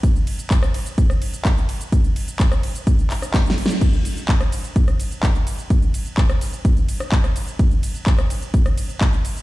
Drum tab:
CC |------------------------------------------------|------------------------------------------------|x-----------------------------------------------|------------------------------------------------|
RD |x-----x-----x-----x-----x-----x-----x-----x-----|x-----x-----x-----x-----x-----x-----x-----x-----|x-----x-----x-----x-----x-----x-----x-----x-----|x-----x-----x-----x-----x-----x-----x-----x-----|
HH |x-----o--x--x-----o--x--x-----o--x--x-----o--x--|x--x--o--x--x--x--o--x--x--x--o--x--x--x--o--x--|x--x--o--x--x--x--o--x--x--x--o--x--x--x--o--x--|x--x--o--x--x--x--o--x--x--x--o--x--x--x--o--x--|
SH |x--x-----x--x--x-----x--x--x-----x--x--x-----x--|x--x-----x--x--x-----x--x--x-----x--x--x-----x--|x--x--x--x--x--x--x--x--x--x--x--x--x--x--x--x--|x--x--x--x--x--x--x--x--x--x--x--x--x--x--x--x--|
CP |------------x-----------------------x-----------|------------x-----------------x-----x-----------|------------x-----------------------x-----------|------------x-----------------------x-----------|
SD |---------------r-----------r--------------------|---------------r-----------------r--o---o---o---|---------------r-----------r--------------------|---------------r-----------------r-----r--------|
BD |o-----------o-----------o-----------o-----------|o-----------o-----------o-----------o-----------|o-----------o-----------o-----------o-----------|o-----------o-----------o-----------o-----------|

CC |------------------------------------------------|
RD |x-----x-----x-----x-----x-----x-----x-----x-----|
HH |x--x--o--x--x--x--o--x--x--x--o--x--x--x--o--x--|
SH |x--x--x--x--x--x--x--x--x--x--x--x--x--x--x--x--|
CP |------------x-----------------------x-----------|
SD |---------------r-----------r--------------------|
BD |o-----------o-----------o-----------o-----------|